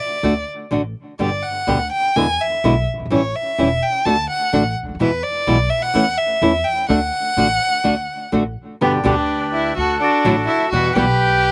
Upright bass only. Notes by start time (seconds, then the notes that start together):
0.23 D2
0.71 A1
1.19 G1
1.68 D2
2.16 E2
2.64 B1
2.94 F#1
3.00 G1
3.05 G#1
3.11 A1
3.59 E1
4.06 D2
4.53 A1
4.83 C#2
4.89 D2
4.95 D#2
5.00 E2
5.47 B1
5.95 E2
6.42 E2
6.89 D2
7.37 A1
7.85 D2
8.33 A1
8.81 G1
9.05 D2
9.77 D2
10.25 A1
10.72 E2
10.96 B1